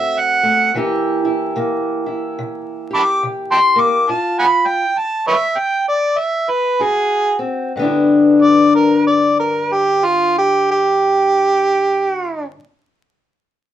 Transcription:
Already playing: steel-string acoustic guitar D2 D3 A3 C4 F#4, harmonica E5
0.19 harmonica F#5
0.43 steel-string acoustic guitar A3
0.74 steel-string acoustic guitar C3 E3 A#3 E4 G4
1.25 steel-string acoustic guitar E4
1.56 steel-string acoustic guitar C3 A#3
2.06 steel-string acoustic guitar E4
2.39 steel-string acoustic guitar C3
2.91 steel-string acoustic guitar G4, harmonica A5 B5 D6
3.23 steel-string acoustic guitar C3
3.52 harmonica G5 A5 C6
3.76 steel-string acoustic guitar A#3
3.81 harmonica D6
4.09 steel-string acoustic guitar G2 F4, harmonica A5
4.39 harmonica F#5 G#5 B5
4.67 harmonica G5
4.98 harmonica A5
5.27 harmonica B4 C#5 E5
5.58 harmonica G5
5.88 harmonica D5
6.18 harmonica E5
6.50 harmonica B4
6.79 steel-string acoustic guitar G#2 F#4, harmonica G#4
7.39 steel-string acoustic guitar C4
7.76 steel-string acoustic guitar G2 D3 B3
7.82 steel-string acoustic guitar D4 E4
8.42 harmonica D5
8.75 harmonica A#4
9.07 harmonica D5
9.39 harmonica A#4
9.73 harmonica G4
10.05 harmonica F4
10.38 harmonica G4
10.71 harmonica G4

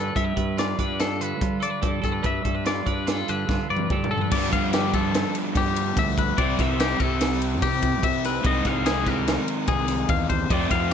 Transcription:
Already playing: clean electric guitar D3 G3 D4 F4 A4 B4
0.16 fingered electric bass G2, clean electric guitar G3 A4 E5, kick, closed hi-hat
0.24 clean electric guitar B4
0.36 fingered electric bass G2, clean electric guitar B4, kick, closed hi-hat
0.58 clean electric guitar F4 D5, snare, closed hi-hat
0.79 fingered electric bass G2, clean electric guitar D4 B4 D5, kick, closed hi-hat
1.00 clean electric guitar F4 A4, snare, closed hi-hat
1.21 clean electric guitar D3 A4 B4, closed hi-hat
1.41 fingered electric bass G3, clean electric guitar F4, kick, closed hi-hat
1.60 clean electric guitar A4 D5, closed hi-hat
1.70 clean electric guitar B4
1.82 fingered electric bass G2, clean electric guitar G3 A4, kick, closed hi-hat
2.02 fingered electric bass G2, clean electric guitar A4, kick, closed hi-hat
2.12 clean electric guitar B4
2.23 fingered electric bass G2, clean electric guitar G3 B4 E5, kick, closed hi-hat
2.45 fingered electric bass G2, clean electric guitar A4, kick, closed hi-hat
2.55 clean electric guitar B4
2.65 clean electric guitar F4 D5, snare, closed hi-hat
2.86 fingered electric bass G2, clean electric guitar D4 B4 D5, kick, closed hi-hat
3.07 clean electric guitar F4 A4, snare, closed hi-hat
3.28 fingered electric bass G2, clean electric guitar D3 A4 B4, closed hi-hat
3.49 fingered electric bass G2, clean electric guitar F4, kick, snare
3.70 fingered electric bass G2, clean electric guitar B4 D5
3.77 high tom
3.90 fingered electric bass G2, clean electric guitar G3 A4, kick, mid tom
4.04 mid tom
4.11 clean electric guitar A4
4.18 clean electric guitar B4, floor tom
4.31 overdriven electric guitar G2 D3 F3 B3 D4, fingered electric bass G2, clean electric guitar D5, kick, crash
4.53 fingered electric bass G2, clean electric guitar F5, kick, ride
4.73 clean electric guitar G4, snare, ride
4.94 clean electric guitar A4, kick, ride
5.14 snare, ride
5.35 ride
5.55 fingered electric bass G2, clean electric guitar G4, kick, snare, ride
5.76 ride
5.97 fingered electric bass D2, clean electric guitar E5, kick, snare, ride
6.18 clean electric guitar B4, kick, ride
6.37 fingered electric bass C2, overdriven electric guitar C3 G3 C4 E4, clean electric guitar D5, kick, ride
6.59 fingered electric bass C2, clean electric guitar E5, kick, snare, ride
6.80 clean electric guitar G4, snare, ride
7.00 fingered electric bass C2, clean electric guitar A4, kick, ride
7.21 snare, ride
7.42 ride
7.62 fingered electric bass C3, clean electric guitar G4, kick, snare, ride
7.83 kick, ride
8.03 fingered electric bass C2, clean electric guitar E5, kick, ride
8.24 clean electric guitar B4, snare, ride
8.43 fingered electric bass C2, overdriven electric guitar C3 D#3 G#3 D#4, clean electric guitar D#5, kick, ride
8.65 fingered electric bass C2, clean electric guitar F5, kick, snare, ride
8.86 clean electric guitar G#4, snare, ride
9.07 clean electric guitar A#4, kick, snare, ride
9.28 snare, ride
9.48 ride
9.67 fingered electric bass C2, clean electric guitar G#4, kick, ride
9.88 snare, ride
10.09 fingered electric bass E2, clean electric guitar F5, kick, ride
10.29 clean electric guitar C5, kick, ride
10.50 overdriven electric guitar F2 C3 F3 A3 C4, fingered electric bass F2, clean electric guitar D5, kick, ride
10.71 fingered electric bass F2, clean electric guitar F5, kick, snare, ride

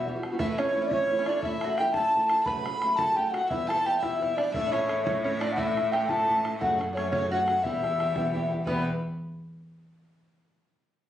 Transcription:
0.07 steel-string acoustic guitar E3 G3 B3 F#4, bodhran
0.16 steel-string acoustic guitar E3 G3 B3 F#4
0.23 bodhran
0.32 steel-string acoustic guitar E3 G3 B3 F#4
0.39 steel-string acoustic guitar A2 E3 A3 C#4 E4, five-string banjo E4, fiddle E5, flute E5, bodhran
0.50 fiddle B4
0.58 steel-string acoustic guitar A3 C#4 E4, five-string banjo C#4, fiddle C#5, flute C#5, bodhran
0.71 steel-string acoustic guitar E3, five-string banjo C#4
0.75 steel-string acoustic guitar A3 C#4 E4
0.82 five-string banjo C#4, flute D5
0.89 steel-string acoustic guitar A2 E3 A3 C#4 E4, five-string banjo C#4, fiddle C#5, flute C#5, bodhran
1.07 steel-string acoustic guitar E3, five-string banjo C#4, bodhran
1.11 steel-string acoustic guitar A3 C#4 E4
1.19 five-string banjo C#4
1.26 steel-string acoustic guitar A3 C#4 E4, five-string banjo D4, flute D5, bodhran
1.43 steel-string acoustic guitar A2 E3 A3 C#4, five-string banjo E4, fiddle E5, flute E5, bodhran
1.47 steel-string acoustic guitar E4
1.61 steel-string acoustic guitar C#4 E4, five-string banjo F#4, bodhran
1.66 steel-string acoustic guitar A3
1.77 steel-string acoustic guitar E3 A3 C#4, five-string banjo G4, fiddle G5, flute G5, bodhran
1.82 steel-string acoustic guitar E4
1.93 steel-string acoustic guitar A3 C#4 E4, fiddle A5, flute A5, bodhran
1.97 steel-string acoustic guitar A2 E3, five-string banjo A4
2.14 steel-string acoustic guitar E3 A3 C#4 E4, bodhran
2.28 steel-string acoustic guitar E4, fiddle A5, bodhran
2.32 steel-string acoustic guitar A3 C#4
2.43 steel-string acoustic guitar F#2 C#3, five-string banjo B4, fiddle B5, flute B5, bodhran
2.48 steel-string acoustic guitar F#3 A3 C#4 F#4
2.66 steel-string acoustic guitar F#3 A3 C#4 F#4, bodhran
2.82 steel-string acoustic guitar F#3 A3 C#4 F#4, bodhran
2.96 steel-string acoustic guitar F#3 A3 C#4 F#4, five-string banjo A4, flute A5, fiddle A5, bodhran
3.00 steel-string acoustic guitar F#2 C#3
3.16 steel-string acoustic guitar F#3 A3 C#4 F#4, five-string banjo G4, flute G5, fiddle G5, bodhran
3.31 steel-string acoustic guitar A3 C#4 F#4, five-string banjo F#4, flute F#5, fiddle F#5, bodhran
3.36 steel-string acoustic guitar F#3
3.48 steel-string acoustic guitar E2 B2 E3 G3 B3 E4, five-string banjo E4, fiddle E5, flute E5, bodhran
3.67 steel-string acoustic guitar G3 B3 E4, five-string banjo A4, fiddle A5, flute A5, bodhran
3.71 steel-string acoustic guitar E3
3.84 steel-string acoustic guitar E3 G3 B3 E4, five-string banjo G4, flute G5
3.99 steel-string acoustic guitar G3 B3 E4, five-string banjo E4, fiddle E5, bodhran
4.03 steel-string acoustic guitar E2 B2 E3, flute E5
4.21 steel-string acoustic guitar E3 G3 B3 E4, five-string banjo E4, bodhran
4.35 steel-string acoustic guitar E3 G3 B3 E4, five-string banjo D4, fiddle D5, flute D5, bodhran
4.53 cello A2, steel-string acoustic guitar A2 E3 A3 C#4 E4, five-string banjo E4, fiddle E5, flute E5, bodhran
4.66 five-string banjo D4
4.72 steel-string acoustic guitar A3 C#4 E4, five-string banjo C#4, fiddle C#5, flute C#5, bodhran
4.88 steel-string acoustic guitar E3 A3 C#4 E4, bodhran
5.04 steel-string acoustic guitar A2 E3 A3 C#4 E4, five-string banjo C#4, flute C#5, fiddle C#5, bodhran
5.23 steel-string acoustic guitar E3 A3 C#4 E4, five-string banjo C#4, flute C#5, fiddle C#5, bodhran
5.37 fiddle D5 E5, flute D5
5.41 steel-string acoustic guitar A3 C#4 E4, five-string banjo D4, bodhran
5.52 fiddle E5, flute F#5
5.57 steel-string acoustic guitar A2 E3 A3 C#4 E4, five-string banjo E4, flute E5, bodhran
5.77 steel-string acoustic guitar A3 C#4 E4, bodhran
5.92 steel-string acoustic guitar E3 A3 C#4 E4, five-string banjo G4, fiddle G5, flute G5, bodhran
6.03 fiddle B5
6.08 steel-string acoustic guitar A2 E3 A3 C#4 E4, five-string banjo A4, fiddle A5, flute A5, bodhran
6.28 steel-string acoustic guitar E3 A3 C#4 E4, bodhran
6.44 steel-string acoustic guitar A3 C#4 E4, bodhran
6.57 steel-string acoustic guitar F#2 C#3 F#3, cello F#2, five-string banjo F#4, flute F#5, fiddle F#5 G5
6.61 steel-string acoustic guitar A3 C#4 F#4, bodhran
6.79 steel-string acoustic guitar F#3 A3 C#4 F#4, bodhran
6.93 steel-string acoustic guitar F#3 A3, five-string banjo C#4 D4, flute C#5, fiddle C#5
6.97 steel-string acoustic guitar C#4 F#4, bodhran
7.11 steel-string acoustic guitar F#2 C#3 F#3 A3 C#4 F#4, five-string banjo C#4, flute C#5, fiddle C#5, bodhran
7.30 steel-string acoustic guitar F#3 A3 C#4 F#4, five-string banjo F#4, flute F#5, fiddle F#5, bodhran
7.47 steel-string acoustic guitar F#3 A3 C#4 F#4, fiddle F#5, bodhran
7.63 cello E2, steel-string acoustic guitar E2 B2 E3 G3 B3 G4, five-string banjo E4, fiddle E5, flute E5, bodhran
7.84 steel-string acoustic guitar E3 G3 B3 G4, bodhran
8.00 steel-string acoustic guitar E3 G3 B3 G4, bodhran
8.16 steel-string acoustic guitar E2 B2 E3 G3 B3 G4, bodhran
8.33 steel-string acoustic guitar E3 G3 B3 G4, bodhran
8.49 steel-string acoustic guitar E3 G3 B3 G4
8.65 steel-string acoustic guitar E2 B2 E3 G3, cello E2, five-string banjo B3, fiddle B4, flute B4, bodhran
8.69 steel-string acoustic guitar B3 G4

